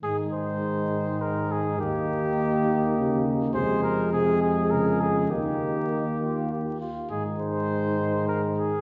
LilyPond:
<<
  \new Staff \with { instrumentName = "Trumpet" } { \time 3/4 \key aes \major \tempo 4 = 102 aes'8 c''4. bes'8 aes'8 | g'2~ g'8 r8 | c''8 bes'8 aes'8 aes'8 bes'8 aes'8 | g'2 r4 |
aes'8 c''4. bes'8 aes'8 | }
  \new Staff \with { instrumentName = "Flugelhorn" } { \time 3/4 \key aes \major ees'2. | ees'2. | aes'4 aes'2 | ees'4 ees'8 f'8 g'8 f'8 |
ees'2. | }
  \new Staff \with { instrumentName = "French horn" } { \clef bass \time 3/4 \key aes \major aes2. | bes2. | aes4 aes2 | bes2~ bes8 r8 |
aes2. | }
  \new Staff \with { instrumentName = "Euphonium" } { \clef bass \time 3/4 \key aes \major ees2. | ees2 des4 | c4 c4 des4 | ees2~ ees8 r8 |
ees2. | }
  \new Staff \with { instrumentName = "Tuba" } { \clef bass \time 3/4 \key aes \major aes,2. | ees,2. | f,2. | ees,2~ ees,8 r8 |
aes,2. | }
>>